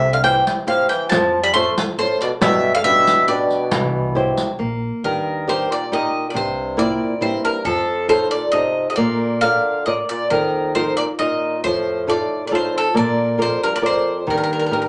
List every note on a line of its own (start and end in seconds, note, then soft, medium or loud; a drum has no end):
0.00 0.37 C2 medium
0.00 0.10 C3 medium
0.00 0.22 C3 medium
0.12 0.22 D3 medium
0.12 0.23 F5 medium
0.23 0.44 E3 medium
0.23 0.58 E4 soft
0.23 0.58 G4 soft
0.23 0.59 C5 medium
0.23 0.45 G5 medium
0.47 riq soft
0.67 0.88 C3 medium
0.67 1.02 E4 soft
0.67 1.02 G4 soft
0.67 1.03 C5 soft
0.67 0.88 F5 medium
0.88 1.09 E3 medium
0.88 1.09 G5 medium
0.88 riq soft
1.09 1.68 F2 loud
1.09 1.41 F3 medium
1.09 1.53 F3 medium
1.09 1.41 A5 medium
1.09 riq medium
1.43 1.53 G3 medium
1.43 1.53 B5 medium
1.54 1.75 A3 medium
1.54 1.90 F4 soft
1.54 1.90 A4 soft
1.54 1.90 C5 medium
1.54 1.75 C6 medium
1.78 riq medium
1.98 2.20 A2 medium
1.98 2.33 F4 soft
1.98 2.33 A4 soft
1.98 2.19 C5 medium
1.98 2.33 C5 soft
2.21 2.31 B2 medium
2.21 2.27 D5 medium
2.21 riq soft
2.41 2.98 G2 medium
2.41 2.73 B2 loud
2.41 2.83 G3 medium
2.41 2.72 E5 medium
2.41 riq medium
2.75 2.84 D3 medium
2.75 2.84 F5 medium
2.84 3.25 B2 medium
2.84 3.19 D4 medium
2.84 3.20 G4 soft
2.84 3.20 B4 soft
2.84 3.25 E5 loud
3.07 riq soft
3.28 4.56 B2 medium
3.28 3.63 D4 soft
3.28 3.63 G4 soft
3.28 3.63 B4 soft
3.28 4.55 D5 medium
3.51 riq soft
3.71 4.29 C2 loud
3.71 4.14 E3 medium
3.71 riq medium
4.15 4.50 E4 soft
4.15 4.50 G4 soft
4.15 4.51 C5 soft
4.37 riq soft
4.59 4.88 A#1 medium
4.59 5.02 A#3 medium
5.04 5.61 D#2 medium
5.04 5.45 G2 medium
5.04 5.47 D#3 medium
5.04 5.49 A#4 medium
5.47 5.68 G2 medium
5.47 5.83 D#4 soft
5.47 5.83 G4 soft
5.47 5.83 A#4 soft
5.47 5.72 C5 medium
5.71 5.91 A#2 medium
5.71 5.91 D5 medium
5.92 6.27 A#2 medium
5.92 6.27 D#4 soft
5.92 6.27 G4 soft
5.92 6.27 A#4 soft
5.92 6.27 D#5 medium
6.29 6.35 A#2 soft
6.29 6.36 D5 soft
6.34 6.92 C2 medium
6.34 6.76 G2 medium
6.34 6.77 C3 medium
6.34 6.76 C5 medium
6.77 7.20 A#2 medium
6.77 7.12 A#3 soft
6.77 7.13 C4 soft
6.77 7.13 E4 medium
6.77 7.19 D5 medium
7.21 7.43 G2 medium
7.21 7.56 A#3 soft
7.21 7.56 C4 soft
7.21 7.57 E4 soft
7.21 7.44 C5 medium
7.43 7.64 G2 medium
7.43 7.64 A#4 medium
7.65 8.22 F2 medium
7.65 8.07 F2 medium
7.65 8.07 F3 medium
7.65 8.06 A4 medium
8.08 8.30 A2 medium
8.08 8.44 D#4 soft
8.08 8.44 F4 soft
8.08 8.44 A4 medium
8.08 8.30 C5 medium
8.31 8.52 A#2 medium
8.31 8.51 D5 medium
8.52 8.88 C3 medium
8.52 8.88 D#4 soft
8.52 8.88 F4 soft
8.52 8.89 A4 soft
8.52 8.87 D#5 medium
8.90 8.96 C3 medium
8.90 8.95 D#5 medium
8.96 9.55 A#1 medium
8.96 9.39 A#2 medium
8.96 9.40 A#3 medium
8.96 9.38 D5 medium
9.41 9.83 D3 medium
9.41 9.77 F4 soft
9.41 9.78 A#4 soft
9.41 9.78 D5 soft
9.41 9.83 F5 medium
9.86 9.97 A#2 medium
9.86 10.22 F4 soft
9.86 10.23 A#4 soft
9.86 10.22 D5 soft
9.86 9.92 D#5 medium
10.09 10.30 A#2 medium
10.09 10.29 D5 medium
10.30 10.89 D#2 medium
10.30 10.72 F2 medium
10.30 10.74 D#3 medium
10.30 10.72 A#4 medium
10.75 10.96 F2 medium
10.75 11.11 D#4 soft
10.75 11.11 F4 soft
10.75 11.11 A#4 soft
10.75 10.96 C5 medium
10.97 11.07 A#2 medium
10.97 11.03 D5 medium
11.19 11.61 A#2 medium
11.19 11.55 D#4 soft
11.19 11.55 F4 soft
11.19 11.55 A#4 soft
11.19 11.60 D#5 medium
11.64 12.21 F2 medium
11.64 12.05 A2 medium
11.64 12.06 F3 medium
11.64 12.09 C5 medium
12.07 12.44 A2 medium
12.07 12.43 D#4 soft
12.07 12.43 F4 soft
12.07 12.43 A4 soft
12.07 12.45 D5 medium
12.45 12.51 A#2 medium
12.45 12.52 D5 medium
12.51 12.72 A2 medium
12.51 12.86 D#4 soft
12.51 12.87 F4 soft
12.51 12.87 A4 soft
12.55 12.77 C5 medium
12.73 12.93 F2 medium
12.78 12.96 A4 medium
12.94 13.53 A#1 medium
12.94 13.35 A#2 medium
12.94 13.37 A#3 medium
12.94 13.41 D5 medium
13.38 13.61 F2 medium
13.38 13.73 F4 soft
13.38 13.74 A#4 soft
13.38 13.62 C5 medium
13.38 13.74 D5 soft
13.63 13.72 G2 medium
13.63 13.73 A#4 medium
13.75 13.79 A#2 medium
13.75 13.80 D5 medium
13.82 14.25 F2 medium
13.82 14.17 F4 soft
13.82 14.18 A#4 soft
13.82 14.18 D5 soft
13.86 14.29 C5 medium
14.27 14.85 D#2 medium
14.27 14.88 G2 medium
14.27 14.69 D#3 medium
14.27 14.36 A#4 medium
14.38 14.42 A#4 soft
14.44 14.50 A#4 medium
14.53 14.58 A#4 soft
14.59 14.65 A#4 soft
14.66 14.72 A#4 soft
14.71 14.88 D#4 soft
14.71 14.88 G4 soft
14.71 14.88 A#4 soft
14.71 14.80 A#4 soft
14.82 14.87 A#4 soft